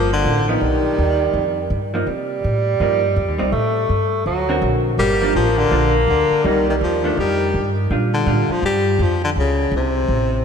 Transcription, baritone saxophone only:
0.13 0.50 D3 medium
0.48 1.57 D#3 medium
4.99 5.33 G3 loud
5.36 5.60 F3 medium
5.58 5.95 D3 medium
6.09 6.47 D3 medium
6.46 6.68 D#3 medium
6.70 6.75 D#3 medium
6.83 7.16 F3 medium
7.19 7.74 G3 medium
8.14 8.53 D3 medium
8.52 8.64 F3 medium
8.65 9.03 G3 medium
9.02 9.23 F3 medium
9.24 9.30 D3 medium
9.39 9.72 C#3 medium
9.76 10.45 C3 medium

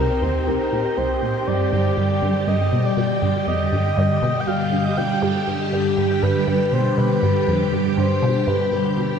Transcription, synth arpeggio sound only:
0.00 0.21 C2 loud
0.22 0.46 D#2 loud
0.47 0.71 C2 medium
0.72 0.96 A#2 medium
0.97 1.15 C2 medium
1.22 1.40 A#2 medium
1.47 1.71 G2 medium
1.73 1.90 G2 medium
1.97 2.21 G2 medium
2.22 2.33 G2 loud
2.47 2.71 G2 medium
2.72 2.90 B2 medium
2.97 3.15 B2 medium
3.22 3.33 G2 medium
3.47 3.71 F2 medium
3.72 3.90 G2 medium
3.97 4.21 G2 loud
4.22 4.46 B2 loud
4.47 4.71 G2 medium
4.72 4.90 G2 medium
4.97 5.15 B2 medium
5.22 5.33 G2 medium
5.47 5.71 G2 medium
5.73 5.90 G2 medium
5.97 6.21 G2 medium
6.23 6.33 G2 loud
6.47 6.71 G2 medium
6.72 6.90 B2 medium
6.98 7.15 B2 medium
7.22 7.33 G2 medium
7.47 7.71 F2 medium
7.72 7.90 G2 medium
7.97 8.21 G2 loud
8.22 8.46 B2 loud
8.47 8.71 G2 medium
8.72 8.90 G2 medium
8.97 9.15 B2 medium

